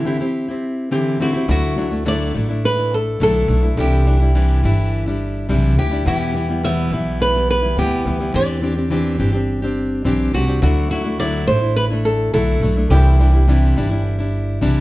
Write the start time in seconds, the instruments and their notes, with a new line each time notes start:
Already playing: nylon-string guitar E4
0.05 steel-string acoustic guitar D3 C4 E4 G4
0.20 steel-string acoustic guitar C4 E4 G4
0.48 steel-string acoustic guitar C4 E4 G4
0.91 steel-string acoustic guitar D3 E3 C4 E4 G4
1.19 steel-string acoustic guitar D3 C4 E4 G4, nylon-string guitar F#4
1.33 steel-string acoustic guitar C4 E4 G4
1.47 upright bass D2, steel-string acoustic guitar D3 F#3 A3 D4 E4, nylon-string guitar F#4
1.76 steel-string acoustic guitar F#3 A3 D4 E4
1.90 steel-string acoustic guitar A3 D4 E4
2.05 steel-string acoustic guitar D3 F#3 A3 D4 E4, nylon-string guitar D5
2.34 upright bass A1, steel-string acoustic guitar F#3 A3 D4 E4
2.49 steel-string acoustic guitar A3 D4 E4
2.65 nylon-string guitar B4
2.77 steel-string acoustic guitar A3 D4 E4
2.94 nylon-string guitar A4
3.20 upright bass B1, steel-string acoustic guitar D3 F#3 A3 D4 E4, nylon-string guitar A4
3.48 upright bass B1, steel-string acoustic guitar F#3 A3 D4 E4
3.63 steel-string acoustic guitar A3 D4 E4
3.77 upright bass C2, steel-string acoustic guitar C3 E3 G3 D4 E4, nylon-string guitar G4
4.05 steel-string acoustic guitar E3 G3 D4 E4
4.20 steel-string acoustic guitar G3 D4 E4
4.34 steel-string acoustic guitar C3 E3 G3 D4 E4
4.63 upright bass G1, steel-string acoustic guitar E3 G3 D4 E4
5.06 steel-string acoustic guitar G3 D4 E4
5.49 upright bass B1, steel-string acoustic guitar C3 E3 G3 D4 E4
5.77 upright bass D2, steel-string acoustic guitar E3 G3 D4 E4, nylon-string guitar G4
5.91 steel-string acoustic guitar G3 D4 E4
6.06 upright bass E2, steel-string acoustic guitar E2 B2 E3 G3 B3 E4, nylon-string guitar G4
6.34 steel-string acoustic guitar E3 G3 B3 E4
6.49 steel-string acoustic guitar E3 G3 B3 E4
6.63 steel-string acoustic guitar E2 B2 E3 G3 B3 E4, nylon-string guitar E5
6.91 upright bass B1, steel-string acoustic guitar E3 G3 B3 E4
7.22 nylon-string guitar B4
7.34 steel-string acoustic guitar E3 G3 B3 E4
7.50 nylon-string guitar B4
7.63 steel-string acoustic guitar E3 G3 B3 E4
7.77 upright bass D2, steel-string acoustic guitar E2 B2 E3 G3 B3 E4, nylon-string guitar G4
8.05 upright bass D2, steel-string acoustic guitar E3 G3 B3 E4
8.19 steel-string acoustic guitar E3 G3 B3 E4
8.34 upright bass E2, steel-string acoustic guitar E3 C4 D4 G4, nylon-string guitar D5
8.61 steel-string acoustic guitar E3 C4 D4 G4
8.76 steel-string acoustic guitar C4 D4 G4
8.90 steel-string acoustic guitar E3 C4 D4 G4
9.18 upright bass G1, steel-string acoustic guitar E3 C4 D4 G4
9.33 steel-string acoustic guitar C4 D4 G4
9.62 steel-string acoustic guitar C4 D4 G4
10.05 upright bass B1, steel-string acoustic guitar E3 C4 D4 G4
10.33 upright bass C2, steel-string acoustic guitar E3 C4 D4 G4, nylon-string guitar F#4
10.47 steel-string acoustic guitar C4 D4 G4
10.61 upright bass D2, steel-string acoustic guitar D3 F#3 A3 D4 E4, nylon-string guitar F#4
10.90 steel-string acoustic guitar F#3 A3 D4 E4, nylon-string guitar F#4
11.04 steel-string acoustic guitar A3 D4 E4
11.19 steel-string acoustic guitar D3 F#3 A3 D4 E4, nylon-string guitar D5
11.47 upright bass A1, steel-string acoustic guitar F#3 A3 D4 E4, nylon-string guitar C5
11.62 steel-string acoustic guitar A3 D4 E4
11.76 nylon-string guitar B4
11.90 steel-string acoustic guitar A3 D4 E4
12.05 nylon-string guitar A4
12.33 upright bass B1, steel-string acoustic guitar D3 F#3 A3 D4 E4, nylon-string guitar A4
12.61 upright bass B1, steel-string acoustic guitar F#3 A3 D4 E4
12.76 steel-string acoustic guitar A3 D4 E4
12.90 upright bass C2, steel-string acoustic guitar C3 E3 G3 D4 E4, nylon-string guitar G4
13.19 steel-string acoustic guitar E3 G3 D4 E4
13.34 steel-string acoustic guitar G3 D4 E4
13.48 steel-string acoustic guitar C3 E3 G3 D4 E4
13.76 upright bass G1, steel-string acoustic guitar E3 G3 D4 E4
13.90 steel-string acoustic guitar G3 D4 E4
14.19 steel-string acoustic guitar G3 D4 E4
14.61 upright bass B1, steel-string acoustic guitar C3 E3 G3 D4 E4